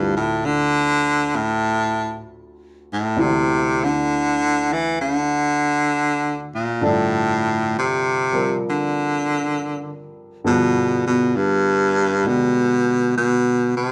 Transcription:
0, 0, Header, 1, 3, 480
1, 0, Start_track
1, 0, Tempo, 906344
1, 1670, Time_signature, 4, 2, 24, 8
1, 7370, End_track
2, 0, Start_track
2, 0, Title_t, "Grand piano"
2, 0, Program_c, 0, 0
2, 0, Control_c, 0, 64, 127
2, 0, Note_on_c, 0, 38, 39
2, 0, Note_on_c, 0, 50, 39
2, 0, Note_on_c, 0, 53, 40
2, 0, Note_on_c, 0, 60, 38
2, 0, Note_on_c, 0, 64, 48
2, 1668, Note_off_c, 0, 38, 0
2, 1674, Note_off_c, 0, 50, 0
2, 1675, Note_off_c, 0, 60, 0
2, 1676, Note_off_c, 0, 64, 0
2, 1676, Note_on_c, 0, 38, 45
2, 1677, Note_off_c, 0, 53, 0
2, 1679, Note_on_c, 0, 52, 42
2, 1682, Note_on_c, 0, 50, 47
2, 1683, Note_on_c, 0, 60, 43
2, 1684, Note_on_c, 0, 64, 49
2, 3604, Note_off_c, 0, 50, 0
2, 3606, Note_on_c, 0, 43, 50
2, 3608, Note_off_c, 0, 38, 0
2, 3609, Note_off_c, 0, 52, 0
2, 3609, Note_on_c, 0, 53, 42
2, 3611, Note_off_c, 0, 60, 0
2, 3611, Control_c, 0, 64, 0
2, 3612, Note_off_c, 0, 64, 0
2, 3612, Note_on_c, 0, 50, 41
2, 3612, Note_on_c, 0, 62, 46
2, 3616, Note_on_c, 0, 69, 55
2, 3693, Control_c, 0, 64, 127
2, 4398, Note_off_c, 0, 53, 0
2, 4406, Note_on_c, 0, 53, 34
2, 4407, Note_on_c, 0, 55, 34
2, 4416, Note_on_c, 0, 60, 35
2, 4417, Note_on_c, 0, 70, 41
2, 5523, Note_off_c, 0, 50, 0
2, 5524, Note_off_c, 0, 43, 0
2, 5525, Note_off_c, 0, 53, 0
2, 5527, Note_off_c, 0, 55, 0
2, 5531, Note_off_c, 0, 60, 0
2, 5531, Note_on_c, 0, 50, 45
2, 5532, Note_off_c, 0, 70, 0
2, 5532, Note_on_c, 0, 43, 53
2, 5533, Note_off_c, 0, 62, 0
2, 5533, Note_on_c, 0, 53, 47
2, 5535, Note_off_c, 0, 69, 0
2, 5536, Control_c, 0, 64, 0
2, 5537, Note_on_c, 0, 59, 46
2, 5539, Note_on_c, 0, 68, 53
2, 5631, Control_c, 0, 64, 127
2, 6474, Note_off_c, 0, 50, 0
2, 6482, Note_on_c, 0, 50, 36
2, 6488, Note_on_c, 0, 56, 34
2, 6499, Note_on_c, 0, 67, 44
2, 7370, Note_off_c, 0, 43, 0
2, 7370, Note_off_c, 0, 50, 0
2, 7370, Note_off_c, 0, 53, 0
2, 7370, Note_off_c, 0, 56, 0
2, 7370, Note_off_c, 0, 59, 0
2, 7370, Note_off_c, 0, 67, 0
2, 7370, Note_off_c, 0, 68, 0
2, 7370, End_track
3, 0, Start_track
3, 0, Title_t, "Baritone saxophone"
3, 0, Program_c, 1, 67
3, 0, Note_on_c, 1, 43, 75
3, 70, Note_off_c, 1, 43, 0
3, 89, Note_on_c, 1, 45, 75
3, 241, Note_on_c, 1, 50, 99
3, 249, Note_off_c, 1, 45, 0
3, 721, Note_on_c, 1, 45, 79
3, 729, Note_off_c, 1, 50, 0
3, 1196, Note_off_c, 1, 45, 0
3, 1551, Note_on_c, 1, 45, 67
3, 1698, Note_on_c, 1, 48, 81
3, 1706, Note_off_c, 1, 45, 0
3, 2031, Note_on_c, 1, 50, 87
3, 2039, Note_off_c, 1, 48, 0
3, 2503, Note_on_c, 1, 52, 79
3, 2511, Note_off_c, 1, 50, 0
3, 2644, Note_off_c, 1, 52, 0
3, 2653, Note_on_c, 1, 50, 80
3, 3439, Note_off_c, 1, 50, 0
3, 3469, Note_on_c, 1, 46, 65
3, 3630, Note_on_c, 1, 45, 81
3, 3637, Note_off_c, 1, 46, 0
3, 4099, Note_off_c, 1, 45, 0
3, 4123, Note_on_c, 1, 48, 75
3, 4564, Note_off_c, 1, 48, 0
3, 4606, Note_on_c, 1, 50, 80
3, 5373, Note_off_c, 1, 50, 0
3, 5545, Note_on_c, 1, 47, 84
3, 5835, Note_off_c, 1, 47, 0
3, 5862, Note_on_c, 1, 47, 76
3, 6017, Note_on_c, 1, 43, 83
3, 6025, Note_off_c, 1, 47, 0
3, 6499, Note_on_c, 1, 47, 89
3, 6507, Note_off_c, 1, 43, 0
3, 6971, Note_off_c, 1, 47, 0
3, 6977, Note_on_c, 1, 47, 83
3, 7274, Note_off_c, 1, 47, 0
3, 7291, Note_on_c, 1, 48, 80
3, 7370, Note_off_c, 1, 48, 0
3, 7370, End_track
0, 0, End_of_file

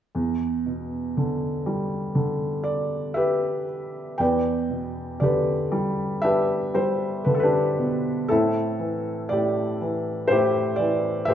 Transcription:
0, 0, Header, 1, 2, 480
1, 0, Start_track
1, 0, Tempo, 1003344
1, 74, Time_signature, 4, 2, 24, 8
1, 1513, Tempo, 1025641
1, 4393, Tempo, 985222
1, 5379, End_track
2, 0, Start_track
2, 0, Title_t, "Felt piano"
2, 0, Program_c, 0, 0
2, 70, Note_on_c, 0, 40, 32
2, 154, Control_c, 0, 64, 127
2, 316, Note_on_c, 0, 47, 27
2, 560, Note_on_c, 0, 50, 35
2, 794, Note_on_c, 0, 55, 34
2, 1021, Note_off_c, 0, 50, 0
2, 1028, Note_on_c, 0, 50, 38
2, 1250, Note_off_c, 0, 47, 0
2, 1261, Note_on_c, 0, 74, 54
2, 1503, Note_on_c, 0, 76, 52
2, 1512, Note_on_c, 0, 71, 45
2, 1515, Note_off_c, 0, 74, 0
2, 1515, Note_on_c, 0, 67, 41
2, 1732, Note_off_c, 0, 55, 0
2, 1974, Note_off_c, 0, 50, 0
2, 1975, Note_off_c, 0, 40, 0
2, 1977, Note_off_c, 0, 71, 0
2, 1979, Note_off_c, 0, 67, 0
2, 1988, Note_on_c, 0, 79, 53
2, 1994, Note_on_c, 0, 40, 37
2, 2001, Note_on_c, 0, 74, 40
2, 2002, Control_c, 0, 64, 0
2, 2002, Note_on_c, 0, 71, 41
2, 2006, Note_off_c, 0, 76, 0
2, 2074, Control_c, 0, 64, 127
2, 2232, Note_on_c, 0, 47, 27
2, 2453, Note_off_c, 0, 79, 0
2, 2459, Note_off_c, 0, 74, 0
2, 2466, Note_on_c, 0, 74, 50
2, 2471, Note_on_c, 0, 50, 33
2, 2475, Note_off_c, 0, 71, 0
2, 2481, Note_on_c, 0, 67, 37
2, 2482, Note_on_c, 0, 71, 35
2, 2708, Note_on_c, 0, 55, 38
2, 2928, Note_off_c, 0, 74, 0
2, 2942, Note_on_c, 0, 76, 66
2, 2947, Note_on_c, 0, 62, 40
2, 2948, Note_off_c, 0, 71, 0
2, 2949, Note_off_c, 0, 67, 0
2, 2955, Note_on_c, 0, 71, 44
2, 2956, Note_on_c, 0, 67, 44
2, 3172, Note_off_c, 0, 47, 0
2, 3180, Note_off_c, 0, 55, 0
2, 3187, Note_on_c, 0, 55, 39
2, 3190, Note_on_c, 0, 72, 55
2, 3195, Note_off_c, 0, 76, 0
2, 3414, Note_off_c, 0, 50, 0
2, 3416, Note_off_c, 0, 71, 0
2, 3423, Note_on_c, 0, 71, 54
2, 3430, Note_on_c, 0, 50, 37
2, 3441, Note_off_c, 0, 72, 0
2, 3460, Note_off_c, 0, 71, 0
2, 3470, Note_on_c, 0, 69, 50
2, 3494, Note_on_c, 0, 71, 61
2, 3502, Note_off_c, 0, 69, 0
2, 3503, Note_off_c, 0, 67, 0
2, 3505, Note_off_c, 0, 62, 0
2, 3510, Note_on_c, 0, 67, 42
2, 3512, Note_on_c, 0, 62, 40
2, 3673, Note_on_c, 0, 47, 36
2, 3893, Note_off_c, 0, 71, 0
2, 3894, Note_off_c, 0, 55, 0
2, 3896, Note_off_c, 0, 40, 0
2, 3898, Note_off_c, 0, 50, 0
2, 3901, Note_off_c, 0, 67, 0
2, 3902, Note_off_c, 0, 62, 0
2, 3906, Note_off_c, 0, 47, 0
2, 3910, Note_on_c, 0, 69, 64
2, 3913, Note_on_c, 0, 45, 44
2, 3922, Control_c, 0, 64, 0
2, 3924, Note_on_c, 0, 64, 47
2, 3925, Note_on_c, 0, 60, 45
2, 4006, Control_c, 0, 64, 127
2, 4148, Note_on_c, 0, 52, 33
2, 4369, Note_off_c, 0, 69, 0
2, 4380, Note_on_c, 0, 74, 60
2, 4381, Note_off_c, 0, 45, 0
2, 4388, Note_on_c, 0, 45, 40
2, 4398, Note_on_c, 0, 67, 42
2, 4628, Note_off_c, 0, 52, 0
2, 4635, Note_on_c, 0, 52, 40
2, 4860, Note_off_c, 0, 60, 0
2, 4860, Note_off_c, 0, 64, 0
2, 4860, Note_on_c, 0, 72, 71
2, 4863, Note_off_c, 0, 45, 0
2, 4870, Note_on_c, 0, 45, 46
2, 4872, Note_off_c, 0, 67, 0
2, 4879, Note_on_c, 0, 67, 52
2, 4880, Note_on_c, 0, 64, 55
2, 4885, Note_off_c, 0, 74, 0
2, 5096, Note_on_c, 0, 74, 63
2, 5104, Note_off_c, 0, 52, 0
2, 5111, Note_on_c, 0, 52, 42
2, 5112, Note_off_c, 0, 72, 0
2, 5336, Note_on_c, 0, 76, 74
2, 5340, Note_off_c, 0, 45, 0
2, 5345, Note_off_c, 0, 67, 0
2, 5347, Note_on_c, 0, 45, 44
2, 5349, Note_off_c, 0, 74, 0
2, 5352, Note_on_c, 0, 67, 50
2, 5356, Note_on_c, 0, 72, 50
2, 5379, Note_off_c, 0, 45, 0
2, 5379, Note_off_c, 0, 52, 0
2, 5379, Note_off_c, 0, 64, 0
2, 5379, Note_off_c, 0, 67, 0
2, 5379, Note_off_c, 0, 72, 0
2, 5379, Note_off_c, 0, 76, 0
2, 5379, End_track
0, 0, End_of_file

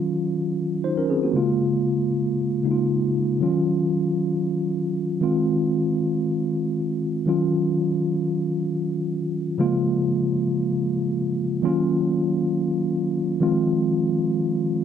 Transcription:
0, 0, Header, 1, 2, 480
1, 0, Start_track
1, 0, Tempo, 500000
1, 14252, End_track
2, 0, Start_track
2, 0, Title_t, "Tine electric piano"
2, 0, Program_c, 0, 4
2, 0, Control_c, 0, 64, 127
2, 0, Note_on_c, 0, 51, 65
2, 0, Note_on_c, 0, 54, 63
2, 0, Note_on_c, 0, 61, 64
2, 0, Note_on_c, 0, 65, 74
2, 774, Note_off_c, 0, 61, 0
2, 780, Note_off_c, 0, 65, 0
2, 808, Note_on_c, 0, 72, 58
2, 814, Note_on_c, 0, 63, 49
2, 934, Note_off_c, 0, 72, 0
2, 936, Note_on_c, 0, 70, 57
2, 937, Note_off_c, 0, 63, 0
2, 943, Note_on_c, 0, 61, 52
2, 1007, Note_off_c, 0, 51, 0
2, 1012, Note_off_c, 0, 54, 0
2, 1049, Note_off_c, 0, 70, 0
2, 1053, Note_off_c, 0, 61, 0
2, 1055, Note_on_c, 0, 68, 62
2, 1061, Note_on_c, 0, 60, 48
2, 1181, Note_off_c, 0, 68, 0
2, 1182, Note_on_c, 0, 66, 52
2, 1184, Note_off_c, 0, 60, 0
2, 1188, Note_on_c, 0, 58, 45
2, 1281, Note_on_c, 0, 49, 65
2, 1290, Note_off_c, 0, 58, 0
2, 1294, Note_on_c, 0, 56, 60
2, 1302, Note_on_c, 0, 58, 57
2, 1310, Note_on_c, 0, 65, 77
2, 1319, Control_c, 0, 64, 0
2, 1420, Note_off_c, 0, 66, 0
2, 1497, Control_c, 0, 64, 127
2, 2505, Note_off_c, 0, 49, 0
2, 2512, Note_off_c, 0, 56, 0
2, 2515, Note_off_c, 0, 58, 0
2, 2519, Note_off_c, 0, 65, 0
2, 2529, Note_on_c, 0, 49, 52
2, 2534, Note_on_c, 0, 56, 47
2, 2541, Note_on_c, 0, 58, 49
2, 2547, Note_on_c, 0, 63, 48
2, 2605, Note_on_c, 0, 65, 57
2, 2607, Note_off_c, 0, 63, 0
2, 3267, Note_on_c, 0, 51, 65
2, 3277, Note_off_c, 0, 49, 0
2, 3277, Note_on_c, 0, 54, 65
2, 3279, Note_off_c, 0, 56, 0
2, 3282, Note_off_c, 0, 65, 0
2, 3283, Note_off_c, 0, 58, 0
2, 3288, Note_on_c, 0, 61, 62
2, 3293, Note_on_c, 0, 65, 67
2, 3294, Control_c, 0, 64, 0
2, 3464, Control_c, 0, 64, 127
2, 4970, Note_off_c, 0, 51, 0
2, 4975, Note_off_c, 0, 54, 0
2, 4980, Note_off_c, 0, 61, 0
2, 4983, Note_off_c, 0, 65, 0
2, 5001, Note_on_c, 0, 51, 62
2, 5007, Note_on_c, 0, 56, 63
2, 5019, Note_on_c, 0, 60, 61
2, 5025, Control_c, 0, 64, 0
2, 5026, Note_on_c, 0, 65, 74
2, 5183, Control_c, 0, 64, 127
2, 6943, Note_off_c, 0, 51, 0
2, 6946, Note_off_c, 0, 56, 0
2, 6951, Note_off_c, 0, 60, 0
2, 6955, Note_off_c, 0, 65, 0
2, 6967, Note_on_c, 0, 51, 58
2, 6977, Note_on_c, 0, 54, 58
2, 6987, Note_on_c, 0, 61, 62
2, 6998, Note_on_c, 0, 65, 75
2, 6999, Control_c, 0, 64, 0
2, 7143, Control_c, 0, 64, 127
2, 8909, Note_off_c, 0, 51, 0
2, 8914, Note_off_c, 0, 54, 0
2, 8919, Note_off_c, 0, 61, 0
2, 8924, Note_off_c, 0, 65, 0
2, 9196, Note_on_c, 0, 49, 80
2, 9201, Note_on_c, 0, 53, 72
2, 9208, Note_on_c, 0, 56, 76
2, 9215, Control_c, 0, 64, 0
2, 9215, Note_on_c, 0, 58, 79
2, 9221, Note_on_c, 0, 65, 93
2, 9356, Control_c, 0, 64, 127
2, 11126, Note_off_c, 0, 49, 0
2, 11128, Note_off_c, 0, 53, 0
2, 11131, Note_off_c, 0, 56, 0
2, 11135, Note_off_c, 0, 58, 0
2, 11138, Note_off_c, 0, 65, 0
2, 11157, Note_on_c, 0, 51, 71
2, 11166, Note_on_c, 0, 54, 75
2, 11169, Note_on_c, 0, 58, 67
2, 11179, Note_on_c, 0, 61, 79
2, 11182, Control_c, 0, 64, 0
2, 11186, Note_on_c, 0, 65, 91
2, 11364, Control_c, 0, 64, 127
2, 12845, Note_off_c, 0, 51, 0
2, 12849, Note_off_c, 0, 54, 0
2, 12851, Note_off_c, 0, 58, 0
2, 12856, Note_off_c, 0, 61, 0
2, 12859, Note_off_c, 0, 65, 0
2, 12867, Note_on_c, 0, 51, 67
2, 12873, Note_on_c, 0, 53, 65
2, 12881, Note_on_c, 0, 56, 77
2, 12889, Note_on_c, 0, 60, 62
2, 12894, Note_on_c, 0, 65, 81
2, 12896, Control_c, 0, 64, 0
2, 13092, Control_c, 0, 64, 127
2, 14252, Note_off_c, 0, 51, 0
2, 14252, Note_off_c, 0, 53, 0
2, 14252, Note_off_c, 0, 56, 0
2, 14252, Note_off_c, 0, 60, 0
2, 14252, Note_off_c, 0, 65, 0
2, 14252, End_track
0, 0, End_of_file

